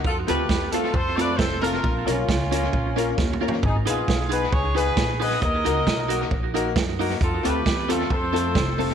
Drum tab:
HH |---x-----x-----x-----x--|---x-----x-----x--------|---x-----x-----x-----o--|p--x-----x-----x-----o--|
SD |------o-----------o-----|------o-----------o-----|------o-----------o-----|------o-----------o-----|
T2 |------------------------|--------------------o---|------------------------|------------------------|
FT |------------------------|----------------------o-|------------------------|------------------------|
BD |o-----o-----o-----o-----|o-----o-----o-----o-----|o-----o-----o-----o-----|o-----o-----o-----o-----|

HH |p--x-----x-----x-----o--|
SD |------o-----------o-----|
T2 |------------------------|
FT |------------------------|
BD |o-----o-----o-----o-----|